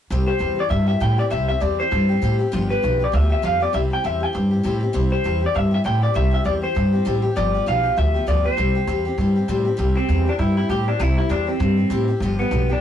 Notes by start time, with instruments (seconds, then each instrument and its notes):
0.10 upright bass C2, steel-string acoustic guitar C3 G3 C4 E4 G4
0.26 steel-string acoustic guitar C4 E4 G4, clean electric guitar C5
0.39 upright bass E2, steel-string acoustic guitar C3 G3 C4 E4 G4
0.56 steel-string acoustic guitar C4 E4 G4
0.60 clean electric guitar D5
0.69 upright bass G2, steel-string acoustic guitar G3 C4 E4 G4, clean electric guitar E5
0.87 steel-string acoustic guitar C4 E4 G4, clean electric guitar E5
1.00 upright bass A2, steel-string acoustic guitar C3 G3 C4 E4 G4, clean electric guitar G5
1.18 steel-string acoustic guitar C4 E4 G4, clean electric guitar D5
1.30 upright bass C2, steel-string acoustic guitar C3 G3 C4 E4 G4, clean electric guitar E5
1.48 steel-string acoustic guitar C4 E4 G4, clean electric guitar E5
1.60 upright bass E2, steel-string acoustic guitar C3 G3 C4 E4 G4, clean electric guitar D5
1.79 steel-string acoustic guitar C4 E4 G4, clean electric guitar C5
1.91 upright bass G2, steel-string acoustic guitar G3 C4 E4 G4
2.09 steel-string acoustic guitar C4 E4 G4
2.22 upright bass A2, steel-string acoustic guitar C3 G3 C4 E4 G4
2.39 steel-string acoustic guitar C4 E4 G4
2.52 upright bass G1, steel-string acoustic guitar G2 D3 F3 B3 F4 G4
2.69 steel-string acoustic guitar F3 B3 F4 G4, clean electric guitar B4
2.82 upright bass B1, steel-string acoustic guitar G2 D3 F3 B3 F4 G4
2.99 steel-string acoustic guitar F3 B3 F4 G4
3.04 clean electric guitar D5
3.12 upright bass D2, steel-string acoustic guitar F3 B3 F4 G4, clean electric guitar E5
3.29 steel-string acoustic guitar F3 B3 F4 G4, clean electric guitar E5
3.42 upright bass F2, steel-string acoustic guitar G2 D3 F3 B3 F4 G4, clean electric guitar F5
3.60 steel-string acoustic guitar F3 B3 F4 G4, clean electric guitar D5
3.73 upright bass C2, steel-string acoustic guitar C3 G3 C4 E4 G4, clean electric guitar E5
3.90 steel-string acoustic guitar C4 E4 G4, clean electric guitar G5
4.04 upright bass E2, steel-string acoustic guitar C3 G3 C4 E4 G4, clean electric guitar E5
4.20 steel-string acoustic guitar C4 E4 G4, clean electric guitar G5
4.33 upright bass G2, steel-string acoustic guitar G3 C4 E4 G4
4.51 steel-string acoustic guitar C4 E4 G4
4.63 upright bass A2, steel-string acoustic guitar C3 G3 C4 E4 G4
4.81 steel-string acoustic guitar C4 E4 G4
4.93 upright bass C2, steel-string acoustic guitar C3 G3 C4 E4 G4
5.10 steel-string acoustic guitar C4 E4 G4, clean electric guitar C5
5.24 upright bass E2, steel-string acoustic guitar C3 G3 C4 E4 G4
5.41 steel-string acoustic guitar C4 E4 G4
5.46 clean electric guitar D5
5.54 upright bass G2, steel-string acoustic guitar G3 C4 E4 G4, clean electric guitar E5
5.71 steel-string acoustic guitar C4 E4 G4, clean electric guitar E5
5.84 upright bass A2, steel-string acoustic guitar C3 G3 C4 E4 G4, clean electric guitar G5
6.02 steel-string acoustic guitar C4 E4 G4, clean electric guitar D5
6.14 upright bass C2, steel-string acoustic guitar C3 G3 C4 E4 G4, clean electric guitar E5
6.31 steel-string acoustic guitar C4 E4 G4, clean electric guitar E5
6.44 upright bass E2, steel-string acoustic guitar C3 G3 C4 E4 G4, clean electric guitar D5
6.62 steel-string acoustic guitar C4 E4 G4, clean electric guitar C5
6.75 upright bass G2, steel-string acoustic guitar G3 C4 E4 G4
6.92 steel-string acoustic guitar C4 E4 G4
7.05 upright bass A1, steel-string acoustic guitar C3 G3 C4 E4 G4
7.22 steel-string acoustic guitar C4 E4 G4
7.36 upright bass G1, steel-string acoustic guitar G2 D3 F3 B3 F4 G4, clean electric guitar D5
7.53 steel-string acoustic guitar F3 B3 F4 G4
7.66 upright bass B1, steel-string acoustic guitar G2 D3 F3 B3 F4 G4, clean electric guitar F5
7.83 steel-string acoustic guitar F3 B3 F4 G4
7.97 upright bass D2, steel-string acoustic guitar F3 B3 F4 G4, clean electric guitar E5
8.14 steel-string acoustic guitar F3 B3 F4 G4
8.27 upright bass D2, steel-string acoustic guitar G2 D3 F3 B3 F4 G4, clean electric guitar D5
8.44 steel-string acoustic guitar F3 B3 F4 G4, clean electric guitar C5
8.57 upright bass C2, steel-string acoustic guitar C3 G3 C4 E4 G4
8.75 steel-string acoustic guitar C4 E4 G4
8.87 upright bass E2, steel-string acoustic guitar C3 G3 C4 E4 G4
9.05 steel-string acoustic guitar C4 E4 G4
9.18 upright bass G2, steel-string acoustic guitar G3 C4 E4 G4
9.36 steel-string acoustic guitar C4 E4 G4
9.48 upright bass A2, steel-string acoustic guitar C3 G3 C4 E4 G4
9.65 steel-string acoustic guitar C4 E4 G4
9.77 upright bass C2, steel-string acoustic guitar C3 G3 C4 E4 G4
9.95 clean electric guitar C4, steel-string acoustic guitar C4 E4 G4
10.09 upright bass E2, steel-string acoustic guitar C3 G3 C4 E4 G4
10.26 steel-string acoustic guitar C4 E4 G4, clean electric guitar D4
10.39 upright bass G2, steel-string acoustic guitar G3 C4 E4 G4, clean electric guitar E4
10.57 steel-string acoustic guitar C4 E4 G4, clean electric guitar E4
10.69 upright bass A2, steel-string acoustic guitar C3 G3 C4 E4 G4, clean electric guitar G4
10.86 steel-string acoustic guitar C4 E4 G4, clean electric guitar D4
10.99 upright bass C2, steel-string acoustic guitar C3 G3 C4 E4 G4, clean electric guitar E4
11.17 steel-string acoustic guitar C4 E4 G4, clean electric guitar E4
11.29 upright bass E2, steel-string acoustic guitar C3 G3 C4 E4 G4, clean electric guitar D4
11.47 clean electric guitar C4, steel-string acoustic guitar C4 E4 G4
11.60 upright bass G2, steel-string acoustic guitar G3 C4 E4 G4
11.77 steel-string acoustic guitar C4 E4 G4
11.90 upright bass A2, steel-string acoustic guitar C3 G3 C4 E4 G4
12.08 steel-string acoustic guitar C4 E4 G4
12.20 upright bass G1, steel-string acoustic guitar G2 D3 F3 B3 F4 G4
12.39 steel-string acoustic guitar F3 B3 F4 G4, clean electric guitar B3
12.51 upright bass B1, steel-string acoustic guitar G2 D3 F3 B3 F4 G4
12.69 steel-string acoustic guitar F3 B3 F4 G4, clean electric guitar D4